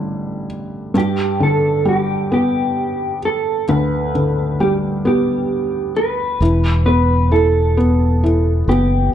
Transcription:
0.00 0.91 A1 soft
0.00 0.45 A2 soft
0.00 0.91 D3 soft
0.00 0.91 G3 soft
0.94 3.63 G2 medium
0.94 1.43 G4 medium
1.40 3.18 D3 soft
1.40 1.88 A4 medium
1.85 3.64 G3 medium
1.85 2.32 G4 medium
2.32 4.09 B3 soft
2.32 3.25 G4 medium
3.25 3.66 A4 medium
3.69 6.37 D2 medium
3.69 5.46 B4 medium
4.15 5.92 D3 soft
4.60 6.37 G3 medium
4.60 4.73 G4 medium
5.05 6.37 B3 soft
5.05 5.93 G4 medium
5.97 6.85 B4 medium
6.40 8.64 E1 medium
6.40 7.30 E3 medium
6.86 7.76 B3 soft
6.86 7.32 B4 medium
7.32 8.22 E3 medium
7.32 8.69 A4 medium
7.77 8.67 B3 soft
8.24 9.14 E3 medium
8.68 9.11 F#1 medium
8.68 9.14 B3 soft
8.68 9.12 G4 medium

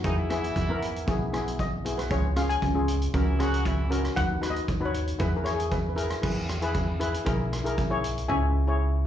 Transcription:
0.00 0.16 D#3 medium
0.00 0.20 B3 medium
0.00 0.16 D#4 loud
0.00 0.65 C#5 medium
0.04 0.51 E2 medium
0.04 0.20 E4 medium
0.04 0.20 G#4 medium
0.04 kick loud
0.04 closed hi-hat medium
0.17 1.16 E3 medium
0.17 1.16 E4 loud
0.30 0.53 B3 medium
0.30 0.53 E4 medium
0.30 0.54 G#4 loud
0.30 cross-stick medium
0.30 closed hi-hat medium
0.44 closed hi-hat medium
0.56 1.02 E2 loud
0.56 kick medium
0.56 closed hi-hat medium
0.69 0.92 B3 medium
0.69 0.93 E4 medium
0.69 0.93 A#4 loud
0.82 closed hi-hat medium
0.96 closed hi-hat medium
1.07 2.00 B1 loud
1.07 1.23 B3 medium
1.07 1.23 E4 medium
1.07 1.23 G#4 medium
1.07 kick loud
1.07 closed hi-hat medium
1.33 1.64 B3 medium
1.33 1.64 E4 medium
1.33 1.64 G#4 medium
1.33 cross-stick medium
1.33 closed hi-hat medium
1.48 closed hi-hat medium
1.59 2.00 D#5 medium
1.59 kick medium
1.59 closed hi-hat medium
1.85 2.01 B3 medium
1.85 2.01 E4 medium
1.85 2.01 G#4 medium
1.85 closed hi-hat medium
1.98 2.11 B4 medium
1.98 cross-stick medium
1.98 closed hi-hat medium
2.10 2.57 C#2 medium
2.10 2.26 C#4 medium
2.10 2.26 F4 medium
2.10 2.26 G#4 medium
2.10 2.37 C#5 loud
2.10 kick loud
2.10 closed hi-hat medium
2.36 2.59 C#4 medium
2.36 2.60 F4 medium
2.36 2.60 G#4 medium
2.36 2.49 F5 loud
2.36 cross-stick medium
2.36 closed hi-hat medium
2.49 3.74 G#5 loud
2.49 closed hi-hat medium
2.62 3.08 C#2 loud
2.62 kick medium
2.62 closed hi-hat medium
2.74 2.98 C#4 medium
2.74 2.98 F4 medium
2.74 2.98 G#4 medium
2.88 closed hi-hat medium
3.02 closed hi-hat medium
3.12 4.06 C#2 loud
3.12 3.37 E3 medium
3.12 3.29 C#4 medium
3.12 3.37 E4 medium
3.12 3.29 F#4 medium
3.12 3.30 A#4 medium
3.12 kick loud
3.12 closed hi-hat medium
3.39 3.65 F#3 loud
3.39 3.70 C#4 loud
3.39 3.65 F#4 loud
3.39 3.71 F#4 medium
3.39 3.71 G#4 loud
3.39 cross-stick medium
3.39 closed hi-hat medium
3.54 closed hi-hat medium
3.65 4.04 E3 medium
3.65 4.04 E4 medium
3.65 kick medium
3.65 closed hi-hat medium
3.90 4.06 C#4 medium
3.90 4.06 F#4 medium
3.90 4.07 A#4 loud
3.90 closed hi-hat medium
4.05 cross-stick medium
4.05 closed hi-hat medium
4.15 4.63 D#2 loud
4.15 4.32 D#4 medium
4.15 4.32 F#4 medium
4.15 4.32 B4 medium
4.15 4.48 F#5 loud
4.15 kick loud
4.15 closed hi-hat medium
4.41 4.65 D#4 medium
4.41 4.65 F#4 medium
4.41 4.66 B4 medium
4.41 cross-stick medium
4.41 closed hi-hat medium
4.50 4.82 D#5 medium
4.56 closed hi-hat medium
4.68 5.15 D#2 loud
4.68 kick medium
4.68 closed hi-hat medium
4.80 5.04 D#4 medium
4.80 5.04 F#4 medium
4.80 5.04 B4 medium
4.85 5.21 C#5 medium
4.94 closed hi-hat medium
5.07 closed hi-hat medium
5.19 6.13 E2 loud
5.19 5.35 E4 medium
5.19 5.35 G#4 medium
5.19 5.35 B4 medium
5.19 5.38 B4 medium
5.19 kick loud
5.19 closed hi-hat medium
5.37 5.54 A#4 medium
5.44 5.76 E4 medium
5.44 5.76 G#4 medium
5.44 5.76 C#5 medium
5.44 cross-stick medium
5.44 closed hi-hat medium
5.54 5.71 G#4 medium
5.60 closed hi-hat medium
5.71 5.79 B4 medium
5.71 kick medium
5.71 closed hi-hat medium
5.80 5.86 B4 medium
5.89 5.94 B4 medium
5.95 6.12 E4 medium
5.95 6.12 G#4 medium
5.95 6.12 A#4 medium
5.95 6.02 B4 medium
5.95 closed hi-hat medium
6.03 6.09 B4 medium
6.10 6.17 B4 medium
6.10 cross-stick medium
6.10 closed hi-hat medium
6.21 7.16 E2 loud
6.21 6.45 E4 medium
6.21 6.46 G#4 medium
6.21 6.46 B4 medium
6.21 kick loud
6.21 crash loud
6.49 cross-stick medium
6.49 closed hi-hat medium
6.61 6.85 E4 medium
6.61 6.85 G#4 medium
6.61 6.85 B4 loud
6.61 closed hi-hat medium
6.74 kick medium
6.74 closed hi-hat medium
7.00 7.16 E4 medium
7.00 7.16 G#4 medium
7.00 7.16 B4 loud
7.00 closed hi-hat medium
7.14 closed hi-hat medium
7.25 8.19 B1 loud
7.25 7.48 E4 medium
7.25 7.49 G#4 medium
7.25 7.49 A#4 medium
7.25 kick loud
7.25 cross-stick medium
7.25 closed hi-hat medium
7.53 cross-stick medium
7.53 closed hi-hat medium
7.64 7.79 E4 medium
7.64 7.80 G#4 medium
7.64 7.80 A#4 loud
7.64 closed hi-hat medium
7.78 kick medium
7.78 closed hi-hat medium
7.90 8.13 E4 medium
7.90 8.13 G#4 medium
7.90 8.14 C#5 loud
8.04 closed hi-hat medium
8.18 closed hi-hat medium
8.28 9.07 C#2 loud
8.28 8.52 E4 medium
8.28 8.52 G#4 medium
8.28 8.52 C#5 medium
8.28 9.02 E5 medium
8.28 9.02 G#5 loud
8.67 8.90 E4 medium
8.67 8.91 G#4 medium
8.67 8.91 C#5 medium

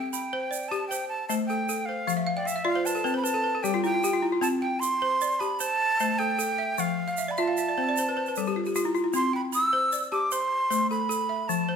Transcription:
0.00 0.13 C4 medium
0.00 0.11 G5 medium
0.00 0.52 G5 medium
0.11 0.70 G5 medium
0.11 0.71 B5 medium
0.11 shaker medium
0.33 0.72 C5 medium
0.51 1.10 D5 medium
0.51 shaker medium
0.69 0.91 G4 medium
0.69 0.87 A5 medium
0.69 1.10 A5 medium
0.69 shaker soft
0.88 1.29 C5 medium
0.88 1.07 G5 medium
0.88 shaker medium
1.09 1.28 A5 medium
1.28 1.69 A3 medium
1.28 1.88 C5 medium
1.28 1.34 A5 medium
1.28 shaker medium
1.47 1.68 A4 medium
1.47 1.87 G5 medium
1.47 shaker soft
1.69 2.08 A4 medium
1.69 shaker medium
1.86 2.28 C5 medium
1.86 2.13 F5 medium
2.07 2.47 F3 medium
2.07 2.25 F5 medium
2.07 shaker medium
2.17 2.35 E5 medium
2.27 2.44 F5 medium
2.36 2.48 D5 medium
2.36 2.55 G5 medium
2.45 2.66 E5 medium
2.45 2.64 F5 medium
2.45 shaker medium
2.56 2.74 E5 medium
2.65 3.05 F4 medium
2.65 2.84 D5 medium
2.65 2.87 F5 loud
2.75 2.94 C5 medium
2.86 3.03 B4 medium
2.86 3.16 A5 medium
2.86 shaker medium
2.95 3.14 A4 medium
3.04 3.25 C4 medium
3.04 3.23 B4 medium
3.04 shaker soft
3.14 3.33 C5 medium
3.14 3.25 B5 medium
3.24 3.43 B4 medium
3.24 3.64 A5 loud
3.24 shaker medium
3.34 3.53 A4 medium
3.44 3.63 B4 medium
3.55 3.73 A4 medium
3.63 4.03 G3 medium
3.63 3.82 G4 medium
3.63 3.83 G5 loud
3.63 shaker medium
3.74 3.92 F4 medium
3.84 4.02 E4 medium
3.84 4.25 G5 loud
3.84 shaker soft
3.94 4.12 F4 medium
4.04 4.43 G4 medium
4.04 shaker medium
4.13 4.31 F4 medium
4.22 4.41 E4 medium
4.32 4.51 F4 medium
4.41 4.81 C4 medium
4.41 4.48 A5 loud
4.41 shaker medium
4.61 4.81 G5 medium
4.61 5.21 G5 medium
4.80 5.41 C6 loud
4.80 5.41 C6 medium
4.80 shaker medium
5.02 5.41 C5 medium
5.21 5.80 D5 medium
5.21 shaker medium
5.31 shaker soft
5.40 5.60 G4 medium
5.40 5.80 A5 medium
5.40 5.61 B5 medium
5.40 shaker soft
5.59 6.00 C5 medium
5.59 6.20 A5 loud
5.59 shaker medium
5.99 6.39 A3 medium
5.99 6.59 C5 medium
5.99 shaker medium
6.19 6.37 A4 medium
6.19 6.81 G5 loud
6.19 shaker soft
6.39 6.78 A4 medium
6.39 shaker medium
6.58 6.98 E5 medium
6.78 7.17 F3 medium
6.78 7.32 F5 medium
6.78 shaker medium
7.07 7.26 F5 medium
7.07 shaker soft
7.17 7.36 E5 medium
7.17 shaker medium
7.28 7.46 D5 medium
7.28 7.41 B5 medium
7.37 7.77 F4 medium
7.37 7.56 E5 medium
7.37 8.56 A5 loud
7.37 shaker soft
7.48 7.65 F5 medium
7.57 7.76 E5 medium
7.57 shaker medium
7.69 7.86 D5 medium
7.78 7.96 C4 medium
7.78 7.95 C5 medium
7.89 8.06 D5 medium
7.97 8.15 C5 medium
7.97 shaker medium
8.09 8.25 B4 medium
8.17 8.34 C5 medium
8.26 8.45 B4 medium
8.26 shaker soft
8.36 8.75 G3 medium
8.36 8.55 A4 medium
8.36 shaker medium
8.46 8.64 G4 medium
8.46 shaker soft
8.56 8.74 F4 medium
8.66 8.75 G4 medium
8.66 shaker soft
8.75 8.93 F4 medium
8.75 9.14 G4 medium
8.75 shaker medium
8.85 9.03 E4 medium
8.95 9.12 F4 medium
8.95 shaker soft
9.04 9.22 E4 medium
9.13 9.53 C4 medium
9.13 9.33 C6 medium
9.13 shaker medium
9.33 9.92 G5 medium
9.33 9.42 B5 medium
9.53 10.11 B5 medium
9.53 10.09 E6 loud
9.53 shaker medium
9.73 10.12 C5 medium
9.92 10.51 D5 medium
9.92 shaker medium
10.02 shaker soft
10.12 10.31 G4 medium
10.12 10.51 A5 medium
10.12 10.34 D6 medium
10.12 shaker soft
10.31 10.69 C5 medium
10.31 10.90 C6 medium
10.31 shaker medium
10.70 11.10 A3 medium
10.70 11.29 C5 medium
10.70 shaker medium
10.91 11.08 A4 medium
10.91 11.50 B5 loud
10.91 shaker soft
11.09 11.49 A4 medium
11.09 shaker medium
11.29 11.69 E5 medium
11.48 11.76 F3 medium
11.48 11.76 A5 medium
11.48 shaker medium
11.69 11.76 C5 medium

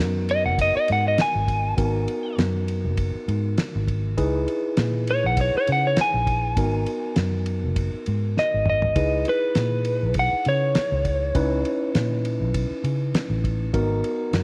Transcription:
0.00 0.47 F#2 medium
0.00 1.74 B3 medium
0.00 1.74 D#4 medium
0.00 1.74 F#4 medium
0.00 1.74 A#4 medium
0.29 0.45 D#5 medium
0.29 ride medium
0.45 0.73 F#1 medium
0.45 0.59 F#5 medium
0.58 0.76 D#5 medium
0.58 kick medium
0.58 ride medium
0.77 0.89 D#5 medium
0.88 1.17 G#2 medium
0.88 ride medium
0.92 1.06 F#5 medium
1.08 1.20 D#5 medium
1.18 2.36 G#5 medium
1.18 muted fingered electric bass stroke soft
1.18 snare loud
1.18 ride medium
1.35 1.76 G#1 medium
1.48 kick medium
1.48 ride medium
1.77 2.06 G#1 medium
1.77 4.13 B3 medium
1.77 4.13 D#4 medium
1.77 4.14 F#4 medium
1.77 4.14 A#4 medium
1.77 kick loud
1.77 ride medium
2.08 ride medium
2.38 2.86 F#2 medium
2.38 snare loud
2.38 ride medium
2.68 ride medium
2.85 3.12 F#1 medium
2.97 kick medium
2.97 ride medium
3.28 3.56 G#2 medium
3.28 ride medium
3.58 muted fingered electric bass stroke soft
3.58 snare loud
3.58 ride medium
3.75 4.15 G#1 medium
3.88 kick medium
3.88 ride medium
4.17 4.45 C#2 medium
4.17 6.53 D#4 medium
4.17 6.53 E4 medium
4.17 6.53 G#4 medium
4.17 6.53 B4 medium
4.17 kick loud
4.17 ride medium
4.48 ride medium
4.77 5.26 A#2 medium
4.77 snare loud
4.77 ride medium
5.07 5.25 C#5 medium
5.07 ride medium
5.24 5.52 B1 medium
5.24 5.39 F#5 medium
5.37 kick medium
5.37 ride medium
5.41 5.55 C#5 medium
5.58 5.69 C#5 medium
5.67 5.96 C#3 medium
5.67 ride medium
5.72 5.86 F#5 medium
5.87 5.99 C#5 medium
5.97 muted fingered electric bass stroke soft
5.97 snare loud
5.97 ride medium
6.01 7.15 G#5 medium
6.14 6.54 A#1 medium
6.27 kick medium
6.27 ride medium
6.57 6.85 G#1 medium
6.57 8.92 B3 medium
6.57 8.92 D#4 medium
6.57 8.92 F#4 soft
6.57 8.93 A#4 medium
6.57 kick loud
6.57 ride medium
6.86 ride medium
7.16 7.65 F#2 medium
7.16 snare loud
7.16 ride medium
7.46 ride medium
7.64 7.91 F#1 medium
7.76 kick medium
7.76 ride medium
7.94 muted fingered electric bass stroke soft
8.06 8.35 G#2 medium
8.06 ride medium
8.37 8.67 D#5 medium
8.37 muted fingered electric bass stroke soft
8.37 snare medium
8.54 8.94 G#1 medium
8.66 9.26 D#5 medium
8.66 mid tom medium
8.82 floor tom medium
8.96 9.24 C#2 medium
8.96 11.31 D#4 medium
8.96 11.31 E4 medium
8.96 11.31 G#4 medium
8.96 11.31 B4 medium
8.96 kick loud
8.96 ride medium
9.25 ride medium
9.29 10.15 B4 medium
9.55 10.04 A#2 medium
9.55 snare loud
9.55 ride medium
9.85 ride medium
10.03 10.30 B1 medium
10.14 kick medium
10.14 ride medium
10.19 10.47 F#5 medium
10.45 10.74 C#3 medium
10.45 12.22 C#5 medium
10.45 ride medium
10.75 muted fingered electric bass stroke soft
10.75 snare loud
10.75 ride medium
10.92 11.32 C#2 medium
11.05 kick medium
11.05 ride medium
11.35 11.63 C#2 loud
11.35 13.70 C#4 medium
11.35 13.70 D#4 medium
11.35 13.70 E4 medium
11.35 13.70 B4 medium
11.35 kick loud
11.35 ride medium
11.65 ride medium
11.95 12.42 A#2 medium
11.95 snare loud
11.95 ride medium
12.25 ride medium
12.41 12.68 B1 medium
12.54 kick medium
12.54 ride medium
12.71 muted fingered electric bass stroke soft
12.84 13.12 C#3 medium
12.84 ride medium
13.14 muted fingered electric bass stroke soft
13.14 snare loud
13.14 ride medium
13.30 13.70 A1 medium
13.44 kick medium
13.44 ride medium
13.73 14.01 G#1 medium
13.73 14.43 B3 medium
13.73 14.43 D#4 medium
13.73 14.43 F#4 medium
13.73 14.43 A#4 medium
13.73 kick loud
13.73 ride medium
14.04 ride medium
14.33 14.43 F#2 medium
14.33 snare loud
14.33 ride medium

